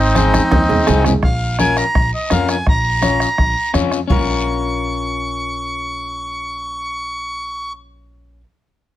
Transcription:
0.00 0.37 G#1 loud
0.00 1.03 G#3 medium
0.00 1.03 C4 medium
0.00 1.03 D#4 medium
0.15 0.41 C4 medium
0.15 0.41 D#4 medium
0.15 0.41 G#4 medium
0.15 bombo rim medium
0.15 cowbell medium
0.15 high conga medium
0.15 short guiro medium
0.34 bombo rim medium
0.34 high conga medium
0.34 short guiro medium
0.51 0.80 D#2 medium
0.51 bombo low medium
0.51 bombo rim medium
0.51 cowbell medium
0.51 high conga loud
0.51 high timbale medium
0.51 long guiro medium
0.69 low conga medium
0.69 low timbale medium
0.87 1.17 C2 loud
0.87 1.12 C4 medium
0.87 1.13 D#4 medium
0.87 1.13 G#4 medium
0.87 bombo rim medium
0.87 cowbell medium
0.87 low conga medium
0.87 low timbale loud
0.87 short guiro medium
1.04 bombo rim medium
1.04 low conga loud
1.04 low timbale medium
1.04 short guiro medium
1.23 1.80 A#1 medium
1.23 1.57 F5 medium
1.23 bombo low medium
1.23 bombo rim medium
1.23 long guiro medium
1.59 1.84 C#4 medium
1.59 1.85 F4 medium
1.59 1.85 A#4 medium
1.59 1.77 G#5 loud
1.59 bombo rim medium
1.59 high conga medium
1.59 short guiro medium
1.77 2.11 A#5 medium
1.77 bombo rim medium
1.77 short guiro medium
1.95 2.10 A#1 medium
1.95 bombo low medium
1.95 bombo rim medium
1.95 long guiro medium
2.15 2.32 D#5 medium
2.30 2.60 F2 medium
2.30 2.56 C#4 medium
2.30 2.56 F4 medium
2.30 2.56 A#4 medium
2.30 2.49 F5 medium
2.30 bombo rim medium
2.30 high conga medium
2.30 short guiro medium
2.48 2.67 G#5 medium
2.48 bombo rim medium
2.48 short guiro medium
2.67 3.24 A#1 medium
2.67 3.72 A#5 medium
2.67 bombo low medium
2.67 bombo rim medium
2.67 long guiro medium
3.02 3.28 C#4 medium
3.02 3.28 F4 medium
3.02 3.28 C#5 medium
3.02 bombo rim medium
3.02 high conga medium
3.02 short guiro medium
3.20 bombo rim medium
3.20 short guiro medium
3.38 3.53 A#1 medium
3.38 bombo low medium
3.38 bombo rim medium
3.38 long guiro medium
3.74 4.03 F2 medium
3.74 3.99 C#4 medium
3.74 4.00 F4 medium
3.74 4.00 C#5 medium
3.74 bombo rim medium
3.74 high conga medium
3.74 short guiro medium
3.91 bombo rim medium
3.91 short guiro medium
4.07 8.43 A#1 medium
4.07 8.40 C#4 medium
4.07 8.43 F4 medium
4.07 7.73 C#6 medium
4.07 bombo low medium
4.07 low conga medium
4.07 long guiro medium
4.12 8.44 A#4 medium

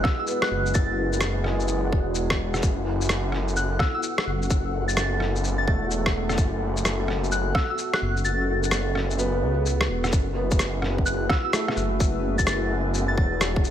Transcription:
0.00 1.46 G#3 medium
0.00 2.59 G#3 medium
0.00 0.28 B3 medium
0.00 6.34 E4 medium
0.00 2.59 F#4 medium
0.00 10.12 F#4 medium
0.00 2.59 G#4 medium
0.00 2.59 B4 medium
0.00 10.12 F#5 medium
0.00 0.14 E6 medium
0.00 cross-stick medium
0.05 kick loud
0.19 0.25 E6 medium
0.27 0.73 B3 medium
0.27 shaker medium
0.42 0.67 F#6 medium
0.42 cross-stick loud
0.51 0.74 F#1 medium
0.66 shaker soft
0.74 1.91 F#1 loud
0.74 1.42 A6 medium
0.74 kick loud
0.74 shaker medium
1.13 shaker medium
1.21 cross-stick loud
1.21 shaker medium
1.44 1.91 G#3 medium
1.44 cross-stick soft
1.60 shaker soft
1.68 shaker medium
1.92 2.38 E1 loud
1.92 kick loud
2.15 shaker soft
2.30 kick medium
2.30 cross-stick loud
2.39 2.61 E1 medium
2.54 cross-stick soft
2.54 shaker soft
2.62 3.79 F#1 medium
2.62 10.09 B3 medium
2.62 10.09 A4 medium
2.62 kick loud
2.62 shaker medium
3.01 shaker medium
3.09 cross-stick loud
3.09 shaker soft
3.32 cross-stick soft
3.48 shaker soft
3.56 3.78 F#6 medium
3.56 shaker medium
3.79 3.89 E6 medium
3.79 kick medium
3.79 cross-stick medium
3.95 4.00 E6 medium
4.03 shaker soft
4.18 cross-stick loud
4.27 4.49 F#1 medium
4.42 shaker soft
4.50 5.67 F#1 medium
4.50 kick loud
4.50 shaker medium
4.88 5.20 A6 medium
4.88 shaker medium
4.97 cross-stick loud
4.97 shaker medium
5.20 cross-stick soft
5.36 shaker soft
5.44 shaker medium
5.58 5.64 A6 medium
5.67 6.37 E1 loud
5.67 6.12 A3 medium
5.67 5.77 A6 medium
5.67 kick loud
5.91 shaker medium
6.06 kick medium
6.06 cross-stick loud
6.29 cross-stick soft
6.29 shaker soft
6.38 7.54 F#1 medium
6.38 10.09 F#4 medium
6.38 kick loud
6.38 shaker medium
6.77 shaker medium
6.85 cross-stick loud
6.85 shaker medium
7.08 cross-stick soft
7.24 shaker soft
7.32 7.53 F#6 medium
7.32 shaker medium
7.54 7.64 E6 medium
7.54 kick loud
7.54 cross-stick medium
7.70 7.75 E6 medium
7.78 shaker soft
7.94 8.18 F#6 medium
7.94 cross-stick loud
8.02 8.24 F#1 medium
8.17 shaker soft
8.24 9.43 F#1 loud
8.24 8.92 A6 medium
8.24 shaker medium
8.63 shaker medium
8.71 cross-stick loud
8.71 shaker medium
8.95 cross-stick soft
9.11 shaker soft
9.18 9.64 B3 medium
9.18 shaker medium
9.42 9.88 C#2 medium
9.66 shaker medium
9.81 cross-stick loud
9.89 10.11 E1 medium
10.04 cross-stick medium
10.04 shaker soft
10.12 11.29 F#1 loud
10.12 13.71 B3 medium
10.12 13.71 E4 medium
10.12 13.71 F#4 medium
10.12 13.71 G#4 medium
10.12 13.71 B4 medium
10.12 13.71 F#5 medium
10.12 kick loud
10.12 shaker medium
10.36 10.81 B3 medium
10.51 kick loud
10.51 shaker medium
10.59 cross-stick loud
10.59 shaker medium
10.82 cross-stick soft
10.98 kick medium
11.06 11.28 F#6 medium
11.06 shaker medium
11.30 11.40 E6 medium
11.30 kick loud
11.30 cross-stick medium
11.45 11.50 E6 medium
11.53 11.98 A3 medium
11.53 cross-stick loud
11.53 shaker medium
11.68 cross-stick medium
11.76 11.99 F#1 medium
11.76 shaker soft
12.00 13.16 F#1 loud
12.00 kick loud
12.00 shaker medium
12.38 12.70 A6 medium
12.38 kick medium
12.38 shaker medium
12.47 cross-stick loud
12.47 shaker medium
12.94 shaker medium
13.08 13.14 A6 medium
13.17 13.64 E1 loud
13.17 13.27 A6 medium
13.17 kick loud
13.41 cross-stick loud
13.41 shaker medium
13.56 kick loud
13.64 13.71 E1 medium
13.64 shaker soft

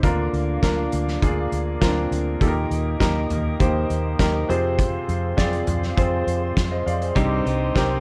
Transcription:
0.03 0.28 D2 medium
0.03 0.88 D3 medium
0.03 0.58 A#3 medium
0.03 0.58 D4 medium
0.03 0.58 F4 medium
0.03 4.26 A#4 medium
0.03 0.58 A#4 medium
0.03 2.13 D5 medium
0.03 2.13 F5 medium
0.03 2.15 D6 medium
0.03 kick loud
0.03 closed hi-hat medium
0.33 0.57 D2 medium
0.33 closed hi-hat medium
0.62 0.87 D2 medium
0.62 1.17 A#3 medium
0.62 1.17 D4 medium
0.62 1.17 F4 medium
0.62 1.18 A#4 medium
0.62 kick medium
0.62 snare medium
0.62 closed hi-hat medium
0.92 1.17 D2 medium
0.92 closed hi-hat medium
1.08 snare soft
1.22 1.47 D2 medium
1.22 1.77 A#3 medium
1.22 1.77 D4 medium
1.22 1.77 F4 medium
1.22 1.77 G#4 medium
1.22 kick loud
1.22 closed hi-hat medium
1.52 1.76 D2 medium
1.52 closed hi-hat medium
1.81 2.06 D2 medium
1.81 2.36 A#3 medium
1.81 1.88 C4 medium
1.81 2.36 F4 medium
1.81 2.36 A#4 medium
1.81 kick medium
1.81 snare loud
1.81 closed hi-hat medium
1.87 2.39 D4 medium
2.11 2.36 D2 medium
2.11 closed hi-hat medium
2.40 2.65 D#2 medium
2.40 3.26 A#2 medium
2.40 2.95 A#3 medium
2.40 2.96 D#4 medium
2.40 2.96 G4 medium
2.40 2.47 A4 medium
2.40 4.47 D#5 medium
2.40 4.46 G5 medium
2.40 4.46 D#6 medium
2.40 kick loud
2.40 closed hi-hat medium
2.48 2.99 A#4 medium
2.71 2.95 D#2 medium
2.71 closed hi-hat medium
3.00 3.25 D#2 medium
3.00 3.55 A#3 medium
3.00 3.55 D#4 medium
3.00 3.55 G4 medium
3.00 3.55 A#4 medium
3.00 kick medium
3.00 snare medium
3.00 closed hi-hat medium
3.30 3.55 D#2 medium
3.30 closed hi-hat medium
3.30 floor tom medium
3.60 3.84 D#2 medium
3.60 4.14 A#3 medium
3.60 4.14 D#4 medium
3.60 4.14 G4 medium
3.60 4.15 C5 medium
3.60 kick loud
3.60 closed hi-hat medium
3.90 4.14 D#2 medium
3.90 closed hi-hat medium
4.19 4.44 D#2 medium
4.19 4.49 A#3 medium
4.19 4.49 D#4 medium
4.19 4.49 G4 medium
4.19 4.49 A#4 medium
4.19 kick medium
4.19 snare medium
4.19 closed hi-hat medium
4.49 4.98 F2 medium
4.49 5.34 C3 medium
4.49 5.31 C4 medium
4.49 5.31 F4 medium
4.49 7.13 G#4 medium
4.49 5.31 G#4 medium
4.49 8.00 C5 medium
4.49 5.31 C5 medium
4.49 7.14 F5 medium
4.49 8.00 C6 medium
4.49 closed hi-hat medium
4.79 kick medium
4.79 closed hi-hat medium
5.09 5.33 F2 medium
5.09 closed hi-hat soft
5.37 5.62 F2 medium
5.37 5.92 C4 medium
5.37 5.92 F4 medium
5.37 5.93 G#4 medium
5.37 5.92 D5 medium
5.37 kick medium
5.37 snare medium
5.37 closed hi-hat medium
5.53 closed hi-hat soft
5.67 5.92 F2 medium
5.67 closed hi-hat medium
5.67 floor tom medium
5.83 snare soft
5.97 6.22 F2 medium
5.97 6.52 C4 medium
5.97 6.52 F4 medium
5.97 6.52 G#4 medium
5.97 6.52 C5 medium
5.97 kick loud
5.97 closed hi-hat medium
6.27 6.51 F2 medium
6.27 closed hi-hat medium
6.57 6.81 F2 medium
6.57 kick loud
6.57 snare medium
6.57 closed hi-hat medium
6.71 6.86 C5 soft
6.71 6.86 D#5 medium
6.86 7.11 F2 medium
6.86 7.01 D5 medium
6.86 7.00 F5 medium
6.86 closed hi-hat medium
7.02 7.30 G#4 soft
7.02 7.15 C5 medium
7.02 closed hi-hat soft
7.16 7.40 C2 medium
7.16 8.00 G2 medium
7.16 7.46 C3 medium
7.16 7.46 G3 medium
7.16 7.71 C4 medium
7.16 7.46 C4 medium
7.16 7.71 D#4 medium
7.16 7.45 D#4 medium
7.16 7.71 G4 medium
7.16 8.00 G4 medium
7.16 7.44 G4 medium
7.16 7.71 C5 medium
7.16 8.00 D#5 medium
7.16 kick loud
7.16 closed hi-hat medium
7.45 7.70 C2 medium
7.45 7.75 C4 soft
7.45 7.75 D#4 medium
7.45 7.75 G4 soft
7.45 closed hi-hat medium
7.75 8.00 C2 medium
7.75 8.00 G3 medium
7.75 8.00 C4 medium
7.75 8.00 D#4 medium
7.75 8.00 G4 medium
7.75 8.00 A#4 medium
7.75 kick medium
7.75 snare medium
7.75 closed hi-hat medium

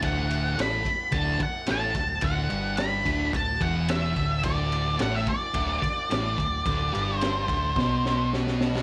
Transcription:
0.02 0.54 D1 medium
0.02 0.56 D2 medium
0.02 0.57 D3 loud
0.02 0.61 F#5 medium
0.02 kick loud
0.02 ride loud
0.30 ride medium
0.57 0.84 A1 medium
0.57 0.84 A2 medium
0.57 0.85 A3 loud
0.57 snare loud
0.57 ride medium
0.61 1.17 B5 loud
0.84 muted distorted electric guitar stroke soft
0.84 muted fingered electric bass stroke soft
0.84 kick medium
0.84 ride medium
1.12 1.39 D1 medium
1.12 1.39 D2 medium
1.12 1.40 D3 medium
1.12 1.39 A5 loud
1.12 kick loud
1.12 ride medium
1.40 1.70 F#5 medium
1.40 muted distorted electric guitar stroke medium
1.40 kick medium
1.40 ride medium
1.66 1.95 A1 medium
1.66 1.94 A2 medium
1.66 1.95 A3 loud
1.66 snare loud
1.66 ride medium
1.71 2.24 A5 medium
1.95 2.21 D1 medium
1.95 2.18 D2 medium
1.95 kick medium
1.95 ride medium
2.21 2.49 D1 medium
2.21 2.49 D2 loud
2.21 2.50 D3 loud
2.21 2.75 F#5 loud
2.21 kick loud
2.21 ride medium
2.50 3.03 G1 loud
2.50 3.04 G2 medium
2.50 3.05 G3 medium
2.50 ride medium
2.77 3.30 B5 loud
2.77 snare loud
2.77 ride medium
3.04 3.32 D1 loud
3.04 3.31 D2 medium
3.04 3.32 D3 medium
3.04 kick medium
3.04 ride medium
3.33 3.59 D1 medium
3.33 3.55 D2 medium
3.33 3.62 A5 medium
3.33 kick loud
3.33 ride medium
3.60 4.13 E1 medium
3.60 4.15 E2 medium
3.60 4.16 E3 loud
3.60 3.90 F#5 medium
3.60 kick medium
3.60 ride medium
3.88 4.44 E5 loud
3.88 snare loud
3.88 ride loud
4.16 4.42 D1 medium
4.16 4.43 D2 medium
4.16 4.44 D3 medium
4.16 kick medium
4.16 ride medium
4.43 4.96 D1 medium
4.43 4.99 D2 loud
4.43 4.99 D3 loud
4.43 5.01 D5 medium
4.43 kick loud
4.43 ride loud
4.72 ride medium
4.99 5.26 A1 medium
4.99 5.26 A2 medium
4.99 5.27 A3 loud
4.99 5.15 F#5 medium
4.99 snare loud
4.99 ride medium
5.15 5.28 E5 medium
5.27 7.19 D5 medium
5.27 muted fingered electric bass stroke soft
5.27 muted distorted electric guitar stroke medium
5.27 kick medium
5.27 ride medium
5.54 5.81 D1 medium
5.54 5.81 D2 medium
5.54 5.81 D3 loud
5.54 kick loud
5.54 ride medium
5.82 muted distorted electric guitar stroke medium
5.82 muted fingered electric bass stroke soft
5.82 kick medium
5.82 ride medium
6.10 6.37 A1 medium
6.10 6.37 A2 medium
6.10 6.38 A3 loud
6.10 snare loud
6.10 ride medium
6.38 6.64 D1 medium
6.38 6.60 D2 medium
6.38 kick medium
6.38 ride medium
6.66 6.91 D1 medium
6.66 6.92 D2 medium
6.66 6.93 D3 loud
6.66 kick loud
6.66 ride medium
6.93 7.46 G1 medium
6.93 7.47 G2 medium
6.93 7.48 G3 medium
6.93 ride medium
7.19 8.28 C5 medium
7.19 ride medium
7.23 snare loud
7.48 7.74 D1 medium
7.48 7.75 D2 medium
7.48 7.75 D3 loud
7.48 kick medium
7.48 ride medium
7.76 8.82 B1 medium
7.76 8.82 B2 medium
7.76 8.82 B3 medium
7.76 kick loud
7.76 snare medium
8.06 snare medium
8.33 snare medium
8.47 snare medium
8.61 snare medium
8.75 snare loud

